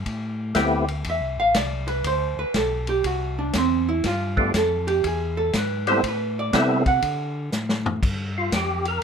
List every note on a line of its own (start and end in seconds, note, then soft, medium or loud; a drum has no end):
0.06 0.54 A2 medium
0.06 kick soft
0.06 ride medium
0.55 1.03 D2 medium
0.55 0.85 A3 medium
0.55 0.85 B3 medium
0.55 0.85 C4 medium
0.55 0.85 E4 medium
0.55 0.86 G4 medium
0.55 kick soft
0.55 snare medium
0.55 hi-hat pedal medium
0.55 ride medium
0.88 ride soft
1.04 1.21 E2 medium
1.04 kick soft
1.04 ride medium
1.10 1.39 E5 medium
1.20 1.38 C2 medium
1.38 1.53 A1 medium
1.38 1.55 F5 loud
1.54 2.03 C2 medium
1.54 1.88 D5 medium
1.54 kick soft
1.54 snare medium
1.54 hi-hat pedal medium
1.54 ride medium
1.87 2.04 B4 medium
1.87 ride soft
2.04 2.35 D2 medium
2.04 2.38 C5 medium
2.04 kick soft
2.04 ride medium
2.37 2.45 D2 soft
2.37 2.54 B4 medium
2.54 3.02 B1 medium
2.54 2.87 A4 medium
2.54 kick soft
2.54 snare medium
2.54 hi-hat pedal soft
2.54 ride medium
2.87 3.04 G4 medium
2.87 ride soft
3.04 3.52 C2 medium
3.04 3.37 F#4 medium
3.04 kick soft
3.04 ride medium
3.39 3.54 D4 medium
3.53 4.02 E2 medium
3.53 kick soft
3.53 snare medium
3.53 hi-hat pedal medium
3.53 ride medium
3.58 3.88 C4 medium
3.89 4.04 E4 medium
4.03 4.52 G2 medium
4.03 4.51 F4 medium
4.03 kick soft
4.03 snare soft
4.03 ride medium
4.37 4.52 A3 medium
4.37 4.52 B3 medium
4.37 4.52 D4 medium
4.37 4.52 F4 medium
4.37 4.52 G4 medium
4.37 kick medium
4.54 5.02 F2 medium
4.54 4.87 A4 medium
4.54 kick soft
4.54 snare medium
4.54 hi-hat pedal medium
4.54 ride medium
4.87 5.03 G4 medium
4.87 ride soft
5.04 5.52 E2 medium
5.04 5.37 G#4 medium
5.04 kick soft
5.04 ride medium
5.37 5.53 A4 medium
5.53 6.01 G#2 medium
5.53 5.87 B4 medium
5.53 kick soft
5.53 snare medium
5.53 hi-hat pedal medium
5.53 ride medium
5.87 6.02 G3 medium
5.87 6.02 B3 medium
5.87 6.02 C4 medium
5.87 6.02 E4 medium
5.87 6.02 A4 medium
5.87 6.03 C5 loud
5.87 ride soft
6.03 6.51 A2 medium
6.03 kick soft
6.03 ride medium
6.08 6.38 B4 medium
6.39 6.54 D5 medium
6.53 7.01 C3 medium
6.53 6.82 G3 medium
6.53 6.83 B3 medium
6.53 6.83 C4 medium
6.53 6.83 E4 medium
6.53 6.83 A4 medium
6.53 kick soft
6.53 snare medium
6.53 hi-hat pedal soft
6.53 ride medium
6.58 6.87 E5 medium
6.86 7.90 F#5 medium
6.86 kick medium
6.86 ride soft
7.02 7.50 D3 medium
7.02 kick soft
7.02 ride medium
7.52 8.01 A2 medium
7.52 snare soft
7.52 hi-hat pedal medium
7.69 snare medium
7.86 floor tom medium
8.02 8.50 G2 medium
8.02 kick medium
8.02 crash medium
8.38 8.53 F4 medium
8.52 9.00 F2 medium
8.52 8.86 G4 medium
8.52 kick soft
8.52 snare medium
8.52 hi-hat pedal soft
8.52 ride medium
8.85 9.03 A#4 medium
8.85 ride soft